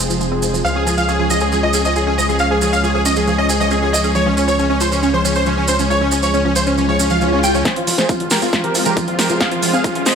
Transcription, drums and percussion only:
0.10 maracas
0.21 maracas
0.42 maracas
0.54 maracas
0.66 maracas
0.87 maracas
0.98 maracas
1.09 maracas
1.30 maracas
1.40 maracas
1.52 maracas
1.73 maracas
1.85 maracas
1.96 maracas
2.19 maracas
2.29 maracas
2.39 maracas
2.61 maracas
2.73 maracas
2.84 maracas
3.05 maracas
3.16 maracas
3.27 maracas
3.49 maracas
3.61 maracas
3.71 maracas
3.94 maracas
4.04 maracas
4.15 maracas
4.37 maracas
4.48 maracas
4.59 maracas
4.80 maracas
4.92 maracas
5.03 maracas
5.25 maracas
5.35 maracas
5.46 maracas
5.68 maracas
5.79 maracas
5.90 maracas
6.11 maracas
6.23 maracas
6.34 maracas
6.56 maracas
6.67 maracas
6.78 maracas
6.99 maracas
7.10 maracas
7.21 maracas
7.43 maracas
7.54 maracas
7.65 kick, snare, closed hi-hat, maracas
7.76 closed hi-hat
7.87 open hi-hat, maracas
7.98 snare, closed hi-hat, maracas
8.09 kick, closed hi-hat, maracas
8.20 closed hi-hat
8.30 snare, open hi-hat, maracas
8.42 open hi-hat, maracas
8.53 kick, snare, closed hi-hat, maracas
8.64 closed hi-hat
8.75 open hi-hat, maracas
8.85 closed hi-hat, maracas
8.97 kick, closed hi-hat, maracas
9.08 closed hi-hat
9.19 snare, open hi-hat, maracas
9.30 closed hi-hat, maracas
9.40 kick, snare, closed hi-hat, maracas
9.51 closed hi-hat
9.62 open hi-hat, maracas
9.73 closed hi-hat, maracas
9.84 kick, closed hi-hat, maracas
9.95 closed hi-hat
10.06 snare, open hi-hat, maracas

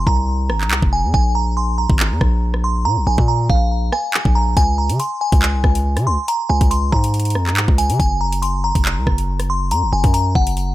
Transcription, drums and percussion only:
0.07 kick
0.50 cross-stick
0.61 clap
0.71 clap
0.82 kick
1.14 kick
1.90 kick
2.00 clap
2.21 kick, cross-stick
2.54 cross-stick
3.18 kick
3.50 kick
3.92 cross-stick
4.14 clap
4.25 kick
4.57 kick, closed hi-hat
4.90 closed hi-hat
5.00 closed hi-hat
5.32 kick, closed hi-hat
5.42 clap
5.64 kick, cross-stick
5.75 closed hi-hat
5.97 cross-stick, closed hi-hat
6.28 closed hi-hat
6.61 kick, closed hi-hat
6.71 closed hi-hat
6.92 kick
7.04 closed hi-hat
7.14 closed hi-hat
7.20 closed hi-hat
7.25 closed hi-hat
7.30 closed hi-hat
7.35 cross-stick
7.47 clap
7.57 clap
7.68 kick
7.78 closed hi-hat
7.90 closed hi-hat
8.00 kick, closed hi-hat
8.33 closed hi-hat
8.43 closed hi-hat
8.75 kick, closed hi-hat
8.85 clap
9.07 kick, cross-stick
9.18 closed hi-hat
9.40 cross-stick, closed hi-hat
9.71 closed hi-hat
10.04 kick, closed hi-hat
10.14 closed hi-hat
10.35 kick
10.47 closed hi-hat
10.57 closed hi-hat

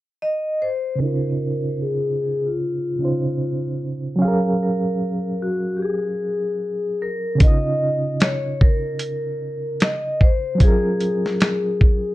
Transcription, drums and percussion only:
7.40 kick, closed hi-hat
8.20 snare, closed hi-hat
8.61 kick
8.99 closed hi-hat
9.80 snare, closed hi-hat
10.21 kick
10.60 kick, closed hi-hat
11.00 closed hi-hat
11.26 snare
11.40 snare, closed hi-hat
11.81 kick

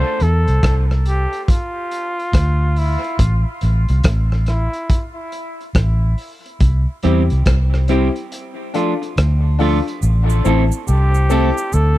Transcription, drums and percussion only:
0.20 closed hi-hat
0.48 closed hi-hat
0.63 kick, cross-stick, closed hi-hat
0.91 cross-stick
1.06 closed hi-hat
1.33 closed hi-hat
1.48 kick, closed hi-hat
1.91 closed hi-hat
2.19 closed hi-hat
2.33 kick, cross-stick, closed hi-hat
2.76 open hi-hat
3.04 closed hi-hat
3.19 kick, closed hi-hat
3.61 closed hi-hat
3.89 closed hi-hat
4.03 kick, cross-stick, closed hi-hat
4.32 cross-stick
4.46 cross-stick, closed hi-hat
4.73 closed hi-hat
4.90 kick, closed hi-hat
5.32 closed hi-hat
5.61 closed hi-hat
5.75 kick, cross-stick, closed hi-hat
6.18 open hi-hat
6.46 closed hi-hat
6.60 kick, closed hi-hat
7.03 closed hi-hat
7.30 closed hi-hat
7.46 kick, cross-stick, closed hi-hat
7.74 cross-stick
7.88 closed hi-hat
8.16 closed hi-hat
8.32 closed hi-hat
8.74 closed hi-hat
9.03 closed hi-hat
9.17 cross-stick, closed hi-hat
9.60 open hi-hat
9.88 closed hi-hat
10.02 cabasa
10.30 cabasa
10.45 cabasa
10.72 cabasa
10.88 cabasa
11.14 cabasa
11.30 cabasa
11.58 cabasa
11.73 cabasa

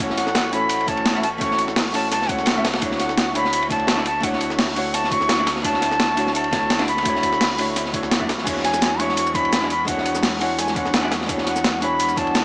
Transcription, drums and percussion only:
0.00 ride
0.10 snare
0.17 snare, closed hi-hat, ride
0.27 snare
0.35 snare, closed hi-hat, ride
0.53 closed hi-hat
0.69 closed hi-hat, ride
0.80 ride
0.88 kick, closed hi-hat, ride
0.97 ride
1.05 snare, closed hi-hat, ride
1.15 snare
1.23 closed hi-hat, ride
1.41 kick, closed hi-hat, ride
1.51 snare
1.58 closed hi-hat, ride
1.68 snare
1.76 snare, closed hi-hat, open hi-hat
1.85 snare
1.94 open hi-hat, ride
2.12 snare, closed hi-hat, ride
2.21 snare
2.29 kick, closed hi-hat, ride
2.39 snare
2.46 snare, closed hi-hat, ride
2.64 snare, closed hi-hat, ride
2.73 snare, ride
2.82 kick, closed hi-hat, ride
2.91 snare
2.99 snare, closed hi-hat, ride
3.09 snare
3.18 snare, closed hi-hat, ride
3.35 closed hi-hat, ride
3.44 snare
3.53 closed hi-hat, ride
3.62 ride
3.70 kick, closed hi-hat, ride
3.79 ride
3.87 snare, closed hi-hat, ride
3.98 snare
4.06 closed hi-hat, ride
4.23 kick, closed hi-hat, ride
4.33 snare
4.40 closed hi-hat, ride
4.50 snare
4.59 snare, closed hi-hat, open hi-hat
4.68 snare
4.76 open hi-hat, ride
4.94 snare, closed hi-hat, ride
5.04 snare
5.12 kick, closed hi-hat, ride
5.21 snare
5.29 snare, closed hi-hat, ride
5.47 snare, closed hi-hat, ride
5.56 snare
5.64 kick, closed hi-hat, ride
5.74 snare
5.81 snare, closed hi-hat, ride
5.91 snare
6.00 snare, closed hi-hat, ride
6.17 closed hi-hat, ride
6.27 snare
6.35 closed hi-hat, ride
6.44 ride
6.53 kick, snare, closed hi-hat, ride
6.70 snare, closed hi-hat, ride
6.79 snare, ride
6.88 closed hi-hat
6.97 snare, ride
7.05 kick, closed hi-hat, ride
7.15 snare
7.23 kick, closed hi-hat, ride
7.33 snare
7.41 snare, closed hi-hat, open hi-hat
7.50 snare
7.59 open hi-hat, ride
7.76 snare, closed hi-hat, ride
7.85 snare
7.94 kick, closed hi-hat, ride
8.03 snare
8.11 snare, closed hi-hat, ride
8.21 kick
8.29 snare, closed hi-hat, ride
8.38 snare
8.47 kick, closed hi-hat, crash, ride, shaker
8.57 snare
8.64 snare, closed hi-hat, ride
8.74 snare, shaker
8.82 snare, closed hi-hat, ride, shaker
8.99 closed hi-hat, ride
9.09 snare
9.17 closed hi-hat, ride, shaker
9.27 ride, shaker
9.35 kick, closed hi-hat, ride
9.45 ride
9.53 snare, closed hi-hat, ride, shaker
9.62 snare
9.70 closed hi-hat, ride
9.88 kick, closed hi-hat, ride, shaker
9.98 snare
10.06 closed hi-hat, ride
10.15 snare, shaker
10.23 snare, closed hi-hat, open hi-hat, shaker
10.33 snare
10.41 open hi-hat, ride
10.59 snare, closed hi-hat, ride, shaker
10.68 snare, shaker
10.76 kick, closed hi-hat, ride
10.86 snare
10.94 snare, closed hi-hat, ride, shaker
11.11 snare, closed hi-hat, ride
11.21 snare
11.29 kick, closed hi-hat, ride, shaker
11.38 snare
11.46 snare, closed hi-hat, ride
11.56 snare, shaker
11.64 snare, closed hi-hat, ride, shaker
11.82 closed hi-hat
12.00 closed hi-hat, ride, shaker
12.08 ride, shaker
12.17 kick, closed hi-hat, ride
12.27 ride
12.35 snare, closed hi-hat, ride, shaker

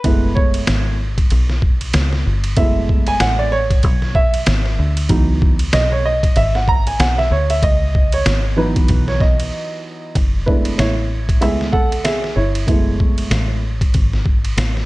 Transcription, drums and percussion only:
0.04 kick, ride
0.37 kick
0.54 ride
0.67 snare, hi-hat pedal, ride
1.18 kick, ride
1.30 ride
1.50 snare
1.62 kick
1.81 ride
1.93 snare, hi-hat pedal, ride
2.13 snare
2.44 ride
2.57 kick, ride
2.89 kick
3.07 ride
3.20 snare, hi-hat pedal, ride
3.71 kick, ride
3.83 kick, ride
4.02 snare
4.15 kick
4.34 ride
4.46 snare, hi-hat pedal, ride
4.66 snare
4.97 ride
5.09 kick, ride
5.42 kick
5.59 ride
5.73 snare, hi-hat pedal, ride
6.23 kick, ride
6.36 ride
6.55 snare
6.68 kick
6.87 ride
7.00 snare, hi-hat pedal, ride
7.19 snare
7.50 ride
7.63 kick, ride
7.95 kick
8.12 ride
8.26 snare, hi-hat pedal, ride
8.76 kick, ride
8.88 kick, ride
9.08 snare
9.20 kick, snare
9.40 ride
10.15 kick, ride
10.48 kick
10.65 ride
10.79 snare, hi-hat pedal, ride
11.29 kick, ride
11.42 ride
11.61 snare
11.73 kick
11.92 ride
12.05 snare, hi-hat pedal, ride
12.24 snare
12.55 ride
12.68 kick, ride
13.00 kick
13.18 ride
13.31 snare, hi-hat pedal, ride
13.81 kick, ride
13.94 kick, ride
14.13 snare
14.26 kick
14.45 ride
14.58 snare, hi-hat pedal, ride
14.77 snare

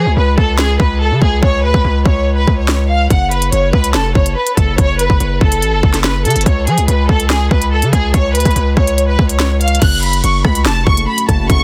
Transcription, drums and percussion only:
0.38 kick
0.59 snare
0.80 kick
1.22 kick
1.43 kick
1.74 kick
2.05 kick
2.48 kick
2.68 snare
3.10 kick, closed hi-hat
3.31 closed hi-hat
3.42 closed hi-hat
3.52 closed hi-hat
3.73 kick
3.84 closed hi-hat
3.94 snare
4.15 kick
4.26 closed hi-hat
4.47 closed hi-hat
4.57 kick, closed hi-hat
4.78 kick, closed hi-hat
4.99 closed hi-hat
5.10 kick
5.20 closed hi-hat
5.41 kick
5.52 closed hi-hat
5.62 closed hi-hat
5.83 kick
5.94 snare, closed hi-hat
6.04 snare
6.25 closed hi-hat
6.30 closed hi-hat
6.36 closed hi-hat
6.41 closed hi-hat
6.46 kick, closed hi-hat
6.67 closed hi-hat
6.78 closed hi-hat
6.88 closed hi-hat
7.09 kick
7.20 closed hi-hat
7.30 snare
7.51 kick
7.62 closed hi-hat
7.82 closed hi-hat
7.93 kick, closed hi-hat
8.14 kick, closed hi-hat
8.35 closed hi-hat
8.40 closed hi-hat
8.45 kick, closed hi-hat
8.51 closed hi-hat
8.56 closed hi-hat
8.77 kick
8.87 closed hi-hat
8.98 closed hi-hat
9.19 kick
9.29 closed hi-hat
9.40 snare
9.61 closed hi-hat
9.68 closed hi-hat
9.75 closed hi-hat
9.82 kick, closed hi-hat, crash
10.03 closed hi-hat
10.13 closed hi-hat
10.24 closed hi-hat
10.45 kick, cross-stick
10.55 closed hi-hat
10.66 snare
10.87 kick
10.97 closed hi-hat
11.18 closed hi-hat
11.29 kick, cross-stick, closed hi-hat
11.50 kick, closed hi-hat

